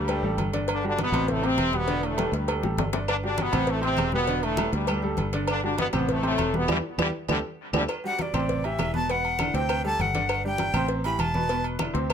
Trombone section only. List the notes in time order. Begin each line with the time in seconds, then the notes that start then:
Already playing: G2 G3
0.71 D3 D4
0.86 D3 D4
1.01 B2 B3
1.30 A2 A3
1.44 C3 C4
1.74 B2 B3
2.04 A2 A3
2.35 G2 G3
3.09 D3 D4
3.24 D3 D4
3.40 B2 B3
3.70 A2 A3
3.83 C3 C4
4.14 B2 B3
4.43 A2 A3
4.73 G2 G3
5.49 D3 D4
5.63 D3 D4
5.80 B2 B3
5.94 B2 B3
6.11 A2 A3
6.27 A2 A3
6.56 B2 B3
6.70 D3 E3 G3
7.01 D3 E3 G3
7.31 C3 D3 G3
7.76 C3 D3 G3